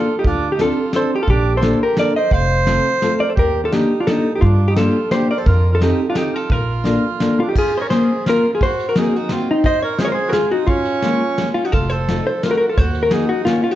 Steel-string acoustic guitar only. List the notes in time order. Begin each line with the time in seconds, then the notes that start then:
0.58 C4 D4 F4 A4
0.92 C4 D4 F4 A4
1.61 A#3 D4 F4 A4
1.97 A#3 D4 F4 A4
2.66 A3 C4 F4 A4
3.02 A3 C4 F4 A4
3.72 A#3 D4 D#4 G4
4.07 A#3 D4 D#4 G4
4.76 A#3 D4 F4 G4
5.12 A#3 D4 F4 G4
5.81 C4 D#4 F4 A4
6.15 C4 D#4 F4 A4
6.84 A#3 D4 F4 A4
7.20 A#3 D4 F4 A4
7.90 A#3 C#4 F4 G#4
8.27 A#3 C#4 F4 G#4
8.96 A#3 C4 D#4 F#4
9.30 A#3 C4 D#4 F#4
9.99 G#3 C4 C#4 F4
10.33 G#3 C4 C#4 F4
11.02 G#3 A#3 C#4 F4
11.39 G#3 A#3 C#4 F4
12.09 A3 C4 D#4 F4
12.43 A3 C4 D#4 F4
13.11 A#3 C#4 D#4 F#4
13.45 A#3 C#4 D#4 F#4